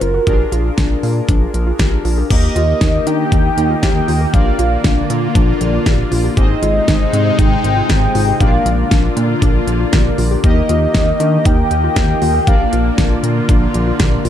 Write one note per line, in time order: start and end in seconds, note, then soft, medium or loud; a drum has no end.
0.00 0.19 F#1 loud
0.00 0.23 C#4 medium
0.00 0.23 F4 medium
0.00 0.11 F4 medium
0.00 0.23 F#4 medium
0.00 0.23 A#4 medium
0.00 0.52 A#4 medium
0.00 closed hi-hat medium
0.14 0.23 F#4 medium
0.27 0.45 A#1 loud
0.27 2.26 D4 medium
0.27 2.26 F4 medium
0.27 0.45 G4 medium
0.27 2.26 G#4 medium
0.27 2.26 A#4 medium
0.27 kick loud
0.27 closed hi-hat medium
0.52 0.70 A#1 medium
0.52 0.71 F4 medium
0.52 closed hi-hat medium
0.78 0.96 A#1 loud
0.78 0.96 D4 medium
0.78 kick loud
0.78 snare loud
0.78 closed hi-hat medium
1.03 1.21 A#2 loud
1.03 1.22 A#3 medium
1.03 open hi-hat medium
1.29 1.46 A#1 loud
1.29 1.47 D4 medium
1.29 kick loud
1.29 closed hi-hat medium
1.54 1.72 A#1 loud
1.54 closed hi-hat medium
1.67 1.76 F4 medium
1.79 1.97 A#1 loud
1.79 1.98 G4 medium
1.79 kick loud
1.79 snare loud
1.79 closed hi-hat medium
2.05 2.23 A#1 loud
2.05 2.14 F4 medium
2.05 open hi-hat medium
2.18 2.27 G4 medium
2.30 2.48 D#2 loud
2.30 4.32 D#3 medium
2.30 6.33 A#3 medium
2.30 4.30 A#3 medium
2.30 4.30 D#4 medium
2.30 2.49 G4 loud
2.30 4.32 G4 loud
2.30 4.30 G4 medium
2.30 4.30 A#4 medium
2.30 4.30 D#5 medium
2.30 3.08 D#5 loud
2.30 kick loud
2.30 closed hi-hat medium
2.30 crash loud
2.56 2.74 D#2 loud
2.56 2.74 F4 medium
2.56 closed hi-hat medium
2.81 2.99 D#2 loud
2.81 3.00 D#4 medium
2.81 kick loud
2.81 snare loud
2.81 closed hi-hat medium
3.07 3.24 D#3 loud
3.07 3.25 D4 medium
3.07 3.83 G5 loud
3.07 closed hi-hat medium
3.32 3.50 D#2 loud
3.32 3.50 D#4 loud
3.32 kick loud
3.32 closed hi-hat medium
3.57 3.75 D#2 loud
3.57 closed hi-hat medium
3.70 3.79 F4 medium
3.83 4.01 D#2 loud
3.83 4.01 G4 medium
3.83 4.35 G5 loud
3.83 kick loud
3.83 snare loud
3.83 closed hi-hat medium
4.08 4.26 D#2 loud
4.08 4.17 F4 medium
4.08 open hi-hat medium
4.21 4.30 G4 medium
4.34 4.52 A#1 loud
4.34 6.35 D3 medium
4.34 6.33 A#3 medium
4.34 6.33 D4 medium
4.34 6.33 F4 medium
4.34 6.35 F4 medium
4.34 4.52 G4 loud
4.34 6.33 A#4 medium
4.34 6.33 D5 medium
4.34 5.10 F5 loud
4.34 kick loud
4.34 closed hi-hat medium
4.59 4.77 A#1 loud
4.59 4.77 F4 medium
4.59 closed hi-hat medium
4.84 5.02 A#1 loud
4.84 5.03 D4 medium
4.84 kick loud
4.84 snare loud
4.84 closed hi-hat medium
5.10 5.28 A#2 loud
5.10 5.28 A#3 medium
5.10 closed hi-hat medium
5.35 5.53 A#1 loud
5.35 5.54 D4 loud
5.35 kick loud
5.35 closed hi-hat medium
5.61 5.79 A#1 loud
5.61 closed hi-hat medium
5.74 5.83 F4 medium
5.86 6.04 A#1 loud
5.86 6.05 G4 medium
5.86 kick loud
5.86 snare loud
5.86 closed hi-hat medium
6.12 6.29 A#1 loud
6.12 6.21 F4 medium
6.12 open hi-hat medium
6.24 6.34 G4 medium
6.37 6.55 G#1 loud
6.37 8.38 C3 medium
6.37 8.38 G#3 medium
6.37 8.36 C4 medium
6.37 8.38 D#4 loud
6.37 8.36 D#4 medium
6.37 6.55 G4 medium
6.37 8.36 G#4 medium
6.37 8.36 C5 medium
6.37 8.36 D#5 medium
6.37 7.40 D#5 loud
6.37 kick loud
6.37 closed hi-hat medium
6.62 6.80 G#1 loud
6.62 6.81 F4 medium
6.62 closed hi-hat medium
6.88 7.06 G#1 loud
6.88 7.06 D#4 medium
6.88 kick loud
6.88 snare loud
6.88 closed hi-hat medium
7.13 7.31 G#2 loud
7.13 7.32 C4 medium
7.13 closed hi-hat medium
7.39 7.57 G#1 loud
7.39 7.57 D#4 loud
7.39 7.89 G5 loud
7.39 kick loud
7.39 closed hi-hat medium
7.64 7.82 G#1 loud
7.64 closed hi-hat medium
7.77 7.86 F4 medium
7.89 8.07 G#1 loud
7.89 8.08 G4 medium
7.89 8.42 G5 loud
7.89 kick loud
7.89 snare loud
7.89 closed hi-hat medium
8.15 8.33 G#1 loud
8.15 8.24 F4 medium
8.15 open hi-hat medium
8.28 8.37 G4 medium
8.40 8.58 A#1 loud
8.40 10.42 D3 medium
8.40 10.40 A#3 medium
8.40 14.29 A#3 medium
8.40 10.40 D4 medium
8.40 10.40 F4 medium
8.40 10.42 F4 medium
8.40 8.59 G4 loud
8.40 10.40 A#4 medium
8.40 10.40 D5 medium
8.40 9.17 F5 loud
8.40 kick loud
8.40 closed hi-hat medium
8.66 8.84 A#1 loud
8.66 8.84 F4 medium
8.66 closed hi-hat medium
8.91 9.09 A#1 loud
8.91 9.10 D4 medium
8.91 kick loud
8.91 snare loud
8.91 closed hi-hat medium
9.17 9.35 A#2 loud
9.17 9.35 A#3 medium
9.17 closed hi-hat medium
9.42 9.60 A#1 loud
9.42 9.60 D4 loud
9.42 kick loud
9.42 closed hi-hat medium
9.68 9.85 A#1 loud
9.68 closed hi-hat medium
9.80 9.89 F4 medium
9.93 10.11 A#1 loud
9.93 10.11 G4 medium
9.93 kick loud
9.93 snare loud
9.93 closed hi-hat medium
10.18 10.36 A#1 loud
10.18 10.28 F4 medium
10.18 open hi-hat medium
10.31 10.40 G4 medium
10.44 10.62 D#2 loud
10.44 12.45 D#3 medium
10.44 12.43 A#3 medium
10.44 12.43 D#4 medium
10.44 10.62 G4 loud
10.44 12.43 G4 medium
10.44 12.45 G4 medium
10.44 12.43 A#4 medium
10.44 12.43 D#5 medium
10.44 11.47 D#5 loud
10.44 kick loud
10.44 closed hi-hat medium
10.69 10.87 D#2 loud
10.69 10.88 F4 medium
10.69 closed hi-hat medium
10.94 11.12 D#2 loud
10.94 11.13 D#4 medium
10.94 kick loud
10.94 snare loud
10.94 closed hi-hat medium
11.20 11.38 D#3 loud
11.20 11.39 D4 medium
11.20 closed hi-hat medium
11.45 11.63 D#2 loud
11.45 11.64 D#4 loud
11.45 11.96 G5 loud
11.45 kick loud
11.45 closed hi-hat medium
11.71 11.89 D#2 loud
11.71 closed hi-hat medium
11.84 11.93 F4 medium
11.96 12.14 D#2 loud
11.96 12.15 G4 medium
11.96 12.49 G5 loud
11.96 kick loud
11.96 snare loud
11.96 closed hi-hat medium
12.22 12.40 D#2 loud
12.22 12.31 F4 medium
12.22 open hi-hat medium
12.35 12.44 G4 medium
12.47 12.65 A#1 loud
12.47 14.29 D3 medium
12.47 14.29 A#3 medium
12.47 14.29 D4 medium
12.47 14.29 F4 medium
12.47 12.66 G4 loud
12.47 14.29 A#4 medium
12.47 14.29 D5 medium
12.47 13.24 F5 loud
12.47 kick loud
12.47 closed hi-hat medium
12.73 12.91 A#1 loud
12.73 12.91 F4 medium
12.73 closed hi-hat medium
12.98 13.16 A#1 loud
12.98 13.17 D4 medium
12.98 kick loud
12.98 snare loud
12.98 closed hi-hat medium
13.23 13.41 A#2 loud
13.23 13.42 A#3 medium
13.23 closed hi-hat medium
13.49 13.67 A#1 loud
13.49 13.67 D4 medium
13.49 kick loud
13.49 closed hi-hat medium
13.74 13.92 A#1 loud
13.74 closed hi-hat medium
13.87 13.96 F4 medium
14.00 14.18 A#1 loud
14.00 14.18 G4 medium
14.00 kick loud
14.00 snare loud
14.00 closed hi-hat medium
14.25 14.29 A#1 loud
14.25 14.29 F4 medium
14.25 open hi-hat medium